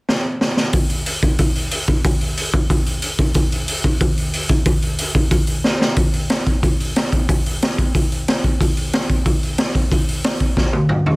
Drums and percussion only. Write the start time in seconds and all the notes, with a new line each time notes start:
0.09 snare
0.41 snare
0.57 snare
0.73 kick, open hi-hat
0.90 open hi-hat
1.06 open hi-hat
1.22 kick, open hi-hat
1.39 kick, open hi-hat
1.55 open hi-hat
1.71 open hi-hat
1.87 kick, open hi-hat
2.04 kick, open hi-hat
2.21 open hi-hat
2.37 open hi-hat
2.53 kick, open hi-hat
2.70 kick, open hi-hat
2.86 open hi-hat
3.02 open hi-hat
3.19 kick, open hi-hat
3.34 kick, open hi-hat
3.52 open hi-hat
3.68 open hi-hat
3.84 kick, open hi-hat
4.00 kick, open hi-hat
4.18 open hi-hat
4.33 open hi-hat
4.49 kick, open hi-hat
4.65 kick, open hi-hat
4.82 open hi-hat
4.98 open hi-hat
5.15 kick, open hi-hat
5.31 kick, open hi-hat
5.47 open hi-hat
5.64 snare
5.81 snare
5.96 kick, open hi-hat
6.13 open hi-hat
6.30 snare, open hi-hat
6.47 kick, open hi-hat
6.63 kick, open hi-hat
6.80 open hi-hat
6.96 snare, open hi-hat
7.12 kick, open hi-hat
7.29 kick, open hi-hat
7.46 open hi-hat
7.62 snare, open hi-hat
7.78 kick, open hi-hat
7.95 kick, open hi-hat
8.12 open hi-hat
8.28 snare, open hi-hat
8.44 kick, open hi-hat
8.61 kick, open hi-hat
8.77 open hi-hat
8.93 snare, open hi-hat
9.09 kick, open hi-hat
9.26 kick, open hi-hat
9.43 open hi-hat
9.58 snare, open hi-hat
9.75 kick, open hi-hat
9.92 kick, open hi-hat
10.09 open hi-hat
10.24 snare, open hi-hat
10.40 kick, open hi-hat
10.57 kick, snare
10.73 high tom
10.89 mid tom
11.06 floor tom